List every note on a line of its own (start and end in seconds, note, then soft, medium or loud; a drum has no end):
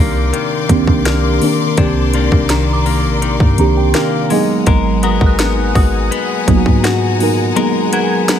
0.00 0.32 C2 loud
0.00 1.77 C3 medium
0.00 0.13 D#3 medium
0.00 0.33 D#3 medium
0.00 0.10 A#3 medium
0.00 1.05 A#3 medium
0.00 0.11 C4 medium
0.00 0.11 D4 medium
0.00 1.77 D4 medium
0.00 0.12 G4 medium
0.00 4.27 A#4 medium
0.00 4.27 D5 medium
0.00 4.27 C6 medium
0.00 1.34 D6 medium
0.00 4.27 D6 medium
0.00 1.55 F6 medium
0.33 2.13 D#3 medium
0.33 closed hi-hat medium
0.69 0.87 C2 loud
0.69 1.30 D#3 medium
0.69 1.30 A#3 medium
0.69 1.31 C4 medium
0.69 1.31 D4 medium
0.69 1.31 G4 medium
0.69 kick medium
0.69 closed hi-hat medium
0.87 1.40 C2 loud
0.87 kick medium
1.05 2.14 A#3 medium
1.05 snare loud
1.05 closed hi-hat medium
1.41 1.72 D#3 medium
1.41 1.72 A#3 medium
1.41 1.73 C4 medium
1.41 1.73 D4 medium
1.41 1.73 A#4 medium
1.41 open hi-hat medium
1.77 2.30 C2 loud
1.77 4.38 C3 medium
1.77 2.99 D#3 medium
1.77 3.00 A#3 medium
1.77 3.00 C4 medium
1.77 2.14 D4 medium
1.77 3.00 D4 medium
1.77 3.01 G4 medium
1.77 kick loud
1.77 closed hi-hat medium
2.13 2.50 D#3 medium
2.13 2.86 A#3 medium
2.13 4.39 D4 medium
2.13 closed hi-hat medium
2.32 3.06 C2 loud
2.32 kick medium
2.50 3.22 D#3 medium
2.50 4.60 A#5 medium
2.50 snare loud
2.50 closed hi-hat medium
2.73 4.80 D6 medium
2.86 3.94 A#3 medium
2.86 open hi-hat soft
3.04 3.39 A#1 loud
3.22 4.30 D#3 medium
3.22 closed hi-hat medium
3.40 3.58 G2 loud
3.40 kick medium
3.58 3.93 C2 loud
3.58 4.19 D#3 medium
3.58 4.19 A#3 medium
3.58 4.20 C4 medium
3.58 4.20 D4 medium
3.58 4.20 G4 medium
3.58 3.76 A#5 medium
3.58 closed hi-hat medium
3.77 3.94 G5 medium
3.94 4.70 A#3 medium
3.94 4.29 F5 medium
3.94 snare loud
3.94 closed hi-hat medium
4.30 5.52 F#3 medium
4.30 4.66 G#3 medium
4.30 8.39 G#3 medium
4.30 5.53 A#3 medium
4.30 5.53 B3 medium
4.30 5.53 D#4 medium
4.30 5.54 G#4 loud
4.30 4.65 D#5 medium
4.30 8.39 F#5 medium
4.30 8.39 G#5 medium
4.30 8.39 A#5 medium
4.30 open hi-hat medium
4.66 5.19 G#1 loud
4.66 7.56 G#3 medium
4.66 5.03 A#4 medium
4.66 kick loud
4.66 closed hi-hat medium
5.03 5.38 B3 medium
5.03 5.74 F#4 medium
5.03 7.56 A#4 medium
5.03 5.74 D#6 medium
5.03 closed hi-hat medium
5.21 5.73 G#1 loud
5.21 kick medium
5.26 7.33 F#6 medium
5.39 6.10 B3 medium
5.39 snare loud
5.39 closed hi-hat medium
5.75 6.10 G#1 loud
5.75 6.83 F#4 medium
5.75 7.85 D#6 medium
5.75 kick loud
5.75 open hi-hat soft
6.11 7.91 B3 medium
6.11 closed hi-hat medium
6.47 6.65 G#1 loud
6.47 7.08 F#3 medium
6.47 7.09 A#3 medium
6.47 7.09 B3 medium
6.47 7.09 D#4 medium
6.47 6.56 F4 medium
6.47 kick loud
6.47 closed hi-hat medium
6.57 7.13 F#4 medium
6.66 7.53 G#2 loud
6.66 kick medium
6.84 7.92 F#4 medium
6.84 snare loud
6.84 closed hi-hat medium
7.20 7.50 F#3 medium
7.20 7.51 A#3 medium
7.20 7.51 B3 medium
7.20 7.52 D#4 medium
7.20 7.52 A#4 medium
7.20 open hi-hat medium
7.56 8.39 F#3 medium
7.56 8.39 G#3 medium
7.56 8.39 A#3 medium
7.56 8.39 B3 medium
7.56 8.39 D#4 medium
7.56 8.39 G#4 medium
7.56 7.93 A#4 medium
7.56 closed hi-hat medium
7.92 8.27 B3 medium
7.92 8.39 F#4 medium
7.92 8.39 A#4 medium
7.92 8.39 G#6 medium
7.92 closed hi-hat medium
8.28 8.39 B3 medium
8.28 snare loud
8.28 closed hi-hat medium